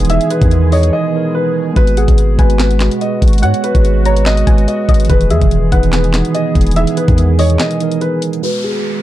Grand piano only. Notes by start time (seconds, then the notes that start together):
0.10 E5
0.30 B4
0.72 C#5
0.93 D#5
1.35 B4
1.76 B4
1.97 G#4
2.39 B4
2.60 B4
3.01 D#5
3.43 F#5
3.64 B4
4.05 C#5
4.26 D#5
4.68 D#5
5.10 B4
5.30 G#4
5.72 B4
5.93 B4
6.35 D#5
6.76 E5
6.97 B4
7.39 C#5
7.60 D#5
8.01 B4
8.43 B4
8.64 G#4